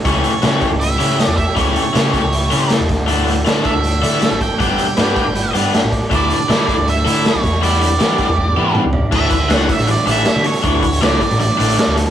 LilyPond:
<<
  \new Staff \with { instrumentName = "Lead electric guitar" } { \time 4/4 \key a \mixolydian \tempo 4 = 159 cis''4. cis''8 e''4. e''8 | cis''2. r4 | r4. e''2 g''8~ | g''2~ g''8 r4. |
d''8 d''4. e''4 cis''4 | d''2. r4 | e''4 fis''8 e''8 d''8 e''4 cis''8~ | cis''4 d''4 d''4. r8 | }
  \new Staff \with { instrumentName = "Clean electric guitar" } { \time 4/4 \key a \mixolydian cis8 a8 e'8 g'8 e'8 e8 a8 g'8 | cis8 a8 e'8 g'8 e'8 e8 a8 d8 | d8 a8 d'8 a'8 d'8 e8 a8 a'8 | g8 e'8 b'8 d''8 b'8 b8 e'8 d''8 |
d8 d'8 a'8 d''8 a'8 a8 d'8 e8 | e8 d'8 g'8 d''8 g'8 b8 d'8 d''8 | d8 e8 a8 d'8 e8 a8 d'8 a'8 | d8 e8 a8 d'8 e8 a8 d'8 a'8 | }
  \new Staff \with { instrumentName = "Overdriven electric guitar" } { \time 4/4 \key a \mixolydian <e a cis' g'>8 r8 <e a cis' g'>8 r4 <e a cis' g'>8 r4 | <e a cis' g'>8 r8 <e a cis' g'>8 r4 <e a cis' g'>8 r4 | <e a d' a'>8 r8 <e a d' a'>8 r4 <e a d' a'>8 r4 | <b d' g'>8 r8 <b d' g'>8 r4 <b d' g'>8 r4 |
<e a e' a'>8 r8 <e a e' a'>8 r4 <e a e' a'>8 r4 | <g b e' g'>8 r8 <g b e' g'>8 r4 <g b e' g'>8 r4 | <e a d'>8 r8 <e a d'>8 r4 <e a d'>8 r4 | <e a d'>8 r8 <e a d'>8 r4 <e a d'>8 r4 | }
  \new Staff \with { instrumentName = "Picked electric bass" } { \clef bass \time 4/4 \key a \mixolydian cis,8 r8 cis8 r16 cis,8. cis8. e,8 r16 | cis,8 r8 cis8 r16 cis,8. cis8. e,16 d,8~ | d,4 d8 r16 d,8. d8. gis,,8 r16 | g,,8 r8 g,8 r16 g,,8. g,8. a,,8 r16 |
d,8 r8 d8 r16 d,8. d8. b,,16 e,8~ | e,4 e8 r16 e,8. e8. cis,8 r16 | d,4 cis,8 r16 a,,8 r16 a,,8 r16 d8 r16 | d,4 cis,8 r16 a,,8 r16 a,,8 r16 d,8 r16 | }
  \new DrumStaff \with { instrumentName = "Drums" } \drummode { \time 4/4 <hh bd>8 hh8 <hh sn>8 <hh bd>8 hh8 hh8 <hh sn>8 <hh bd>8 | <hh bd>8 hh8 <hh sn>8 <hh bd>8 hh8 hh8 <hh sn>8 <hh bd sn>8 | hh8 hh8 <hh sn>8 <hh bd>8 hh8 hh8 <hh sn>8 <hh bd>8 | <hh bd>8 hh8 <hh sn>8 <hh bd>8 hh8 hh8 <hh sn>8 <hh bd>8 |
<hh bd>8 hh8 <hh sn>8 <hh bd>8 hh8 hh8 <hh sn>8 <hh bd sn>8 | hh8 hh8 <hh sn>8 <hh bd>8 bd4 toml8 tomfh8 | <cymc bd>8 <hh bd>8 <hh sn>8 <hh bd>16 <hh sn>16 hh8 hh8 <hh sn>8 hh16 hh16 | <hh bd>8 <hh bd>16 hh16 <hh sn>8 <hh bd>16 hh16 hh8 hh16 hh16 <hh sn>8 hh8 | }
>>